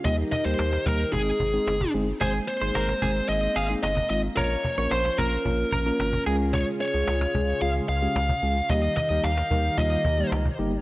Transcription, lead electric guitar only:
X:1
M:4/4
L:1/16
Q:1/4=111
K:Ab
V:1 name="Lead electric guitar"
e2 e c3 B2 A6 z2 | c2 c6 e2 f2 e2 e2 | d4 c2 B8 z2 | d2 d6 f2 f6 |
e2 e2 f4 e4 z4 |]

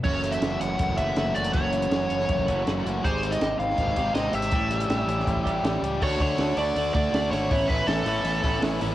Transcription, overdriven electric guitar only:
X:1
M:4/4
L:1/8
Q:1/4=161
K:F#m
V:1 name="Overdriven electric guitar"
F,, A, F C A, F A, F | F,, A, F C A, F A, F | G, ^B, =G ^D B, G B, G | A,, =G, =G C G, G G, G |
[D,A,DF] [D,A,DF] [D,A,DF] [D,A,DF] [D,A,DF] [D,A,DF] [D,A,DF] [D,A,DF] | [A,,E,A,CE] [A,,E,A,CE] [A,,E,A,CE] [A,,E,A,CE] [A,,E,A,CE] [A,,E,A,CE] [A,,E,A,CE] [A,,E,A,CE] |]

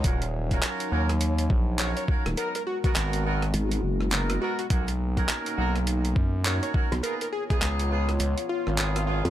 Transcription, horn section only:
X:1
M:4/4
L:1/16
Q:"Swing 16ths" 1/4=103
K:Ebm
V:1 name="Horn section"
[DFGB] z2 [DFGB]3 [DFGB] z4 z [DFGB]2 [DFGB] z | [CEGB] z2 [CEGB]3 [CEGB] z4 z [CEGB]2 [CEGB] z | [D^D^F^A] z2 [_D^DFA]3 [_D^DFA] z4 z [_D^DFA]2 [_D^DFA] z | [CEFA] z2 [CEFA]3 [CEFA] z4 z [CEFA]2 [CEFA] z |]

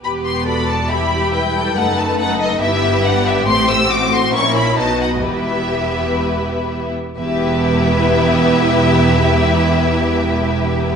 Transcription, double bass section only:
X:1
M:4/4
L:1/8
Q:1/4=127
K:Em
V:1 name="Double bass section" clef=bass
E,,,8 | F,,,4 G,,,4 | A,,,4 ^A,,,2 B,,,2 | E,,,6- E,,, z |
E,,,8- | E,,,8 |]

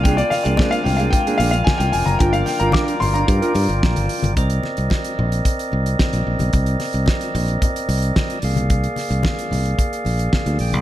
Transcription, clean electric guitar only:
X:1
M:4/4
L:1/16
Q:1/4=111
K:Cm
V:1 name="Clean electric guitar"
[B,DA] z2 [B,DA] [B,DA] z2 [B,DA] z [B,DA] [B,DA] z4 z | [DFB] z2 [DFB] [DFB] z2 [DFB] z [DFB] z6 | z16 | z16 |
z16 |]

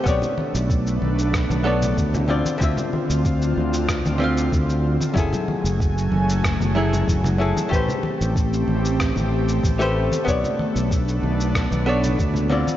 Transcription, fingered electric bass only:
X:1
M:4/4
L:1/16
Q:1/4=94
K:Bdor
V:1 name="Fingered electric bass" clef=bass
B,,, z2 B,,,3 B,,,3 B,,,3 D,,3 z | D,, z2 D,,3 D,,3 D,,3 D,,3 z | F,,, z2 F,,,3 F,,,3 F,,,3 F,,,3 z | A,,, z2 A,,,3 A,,,3 A,,,3 A,,,3 z |
B,,, z2 B,,,3 B,,,3 B,,,3 D,,3 z |]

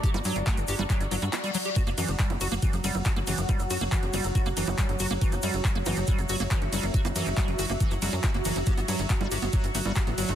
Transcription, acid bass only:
X:1
M:4/4
L:1/16
Q:1/4=139
K:none
V:1 name="Acid bass" clef=bass
G G, ^F, G, A, G, G G, F, G, F, G, z G, F, G | ^F ^A, E, ^F, G, F, F A, E, F, G, F, F A, E, F, | G, ^F, ^F ^A, E, F, G, F, F A, E, F, G, F, F A, | E, ^F, G, F, ^F ^A, E, F, G, F, F A, E, F, G, F, |
^F ^A, E, ^F, G, F, F A, E, F, G, F, F A, E, F, | G B, ^F, G, A, G, G B, F, G, A, G, G B, F, G, |]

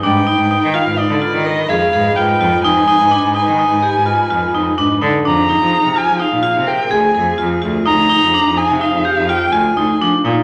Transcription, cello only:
X:1
M:11/8
L:1/16
Q:1/4=126
K:Fdor
V:1 name="Cello" clef=bass
A,,3 A,,2 E, z A,, z D, z E,3 F,, z A,,2 A,, z F,, z | F,,3 A,,2 A,, z E,2 A,, z A,,3 F,,2 F,, z A,, z D, z | F,,3 F,2 C, z F, z B,, z C,3 D,, z F,,2 F,, z D,, z | D,,3 F,,2 F,, z C,2 F,, z F,,3 D,,2 D,, z F, z B,, z |]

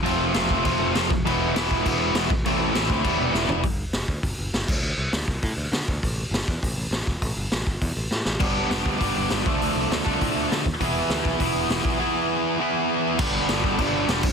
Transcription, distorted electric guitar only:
X:1
M:4/4
L:1/8
Q:1/4=201
K:Gmix
V:1 name="Distorted electric guitar"
[F,A,CF]2 [F,A,CF]2 [F,A,CF]2 [F,A,CF] z | [E,^G,B,E]2 [E,G,B,E]2 [E,G,B,E]2 [E,G,B,E] z | [A,,E,A,CE]2 [A,,E,A,CE]2 [E,G,B,E]2 [E,G,B,E]2 | z8 |
z8 | z8 | z8 | [G,B,DG]4 [G,B,DG]3 [D,F,A,DA]- |
[D,F,A,DA]3 [D,F,A,DA]4 z | [E,B,E^G]4 [E,B,EG]4 | [E,B,E^G]4 [E,B,EG]4 | [G,,D,G,B,D]2 [G,,D,G,B,D]2 [G,,D,G,B,D]2 [G,,D,G,B,D] z |]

